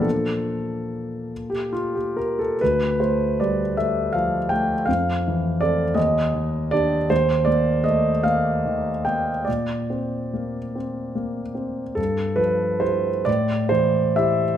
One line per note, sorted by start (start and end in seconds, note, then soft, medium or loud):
0.00 2.54 A#2 soft
0.00 2.54 F3 soft
0.00 2.55 A#3 soft
0.00 2.55 D4 soft
0.00 1.71 F4 soft
0.00 1.51 A4 medium
1.50 1.73 G4 soft
1.73 1.96 F4 medium
1.95 2.18 G4 soft
2.17 2.39 A#4 soft
2.39 2.60 A4 soft
2.61 4.85 D2 soft
2.61 3.00 B4 medium
3.00 3.62 A3 soft
3.00 3.38 C5 soft
3.40 3.77 G3 soft
3.40 3.77 D5 medium
3.77 4.37 A3 soft
3.77 4.14 E5 medium
4.13 4.74 F3 soft
4.13 4.50 F5 medium
4.49 4.89 A3 soft
4.49 4.87 G5 medium
4.86 5.94 F2 soft
4.86 5.59 F5 medium
5.28 5.84 E3 soft
5.61 5.93 C4 soft
5.61 5.94 A4 soft
5.61 5.97 D5 medium
5.94 7.06 D#2 soft
5.94 6.71 D#5 medium
6.34 6.95 D#3 soft
6.71 7.07 D4 soft
6.71 7.07 G4 soft
6.71 7.10 D5 medium
7.10 9.43 D#2 soft
7.10 7.48 C5 medium
7.45 8.09 A#3 soft
7.45 7.84 D5 medium
7.84 8.25 A3 soft
7.84 8.24 D#5 medium
8.23 8.90 A#3 soft
8.23 9.05 F5 medium
8.65 9.31 D#3 soft
9.05 9.48 A#3 soft
9.05 9.46 G5 medium
9.45 11.94 A#2 soft
9.45 11.97 D5 medium
9.90 10.57 C4 soft
10.34 10.75 A#3 soft
10.75 11.41 C4 soft
11.15 11.81 A#3 soft
11.55 11.97 C4 soft
11.95 13.22 G2 soft
11.95 12.39 A4 medium
12.36 13.08 F3 soft
12.36 12.81 B4 medium
12.80 13.22 E4 soft
12.80 13.22 G4 soft
12.80 13.25 C5 medium
13.25 14.57 A2 soft
13.25 13.70 D5 medium
13.69 14.45 E3 soft
13.69 14.16 C5 medium
14.16 14.57 E4 soft
14.16 14.57 G4 soft
14.16 14.57 E5 medium